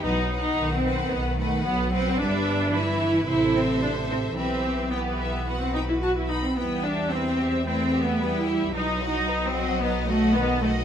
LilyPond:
<<
  \new Staff \with { instrumentName = "Violin section" } { \time 4/4 \key e \minor \tempo 4 = 111 fis''8 fis''4 fis''4 fis''4 fis''8 | e''4 e''4 e''2 | e''4 g''8 e''8 fis''8 g''8 a''8 b''8 | g''8 e''8 g''8 e''8 g''8 e''8 g''8 e''8 |
dis''8 fis''8 dis''8 fis''8 dis''8 fis''8 dis''8 fis''8 | }
  \new Staff \with { instrumentName = "Violin section" } { \time 4/4 \key e \minor b'8 b'4 b'4 b'4 b'8 | b'4 b'4 <a' c''>2 | <g' b'>4 <g' b'>4 <fis' b'>4. r8 | <e' b'>8 g'8 <e' b'>8 g'8 <e' b'>8 g'8 <e' b'>8 g'8 |
<dis' b'>8 <fis' dis''>8 <dis' b'>8 <fis' dis''>8 <dis' b'>8 <fis' dis''>8 <dis' b'>8 <fis' dis''>8 | }
  \new Staff \with { instrumentName = "Viola section" } { \time 4/4 \key e \minor \tuplet 3/2 { dis'4 dis'8~ dis'8 c'4 } b8 a8 b8 c'8 | d'4 e'4 e'8 c'8 d'8 c'8 | c'4 b4~ b16 c'16 dis'16 e'16 fis'16 e'16 dis'16 c'16 | b8 d'8 c'4 \tuplet 3/2 { c'4 b8~ b8 e'4 } |
\tuplet 3/2 { dis'4 dis'8~ dis'8 c'4 } b8 a8 b8 a8 | }
  \new Staff \with { instrumentName = "Cello section" } { \clef bass \time 4/4 \key e \minor fis4 dis8 dis4. fis4 | g4 e4 c2 | e2.~ e8 r8 | g2 a4 g4 |
fis4 fis2 dis4 | }
  \new Staff \with { instrumentName = "Double bass section" } { \clef bass \time 4/4 \key e \minor b,,4 b,,4 b,,4 b,,4 | g,,2 a,,2 | b,,2.~ b,,8 r8 | e,1 |
b,,1 | }
>>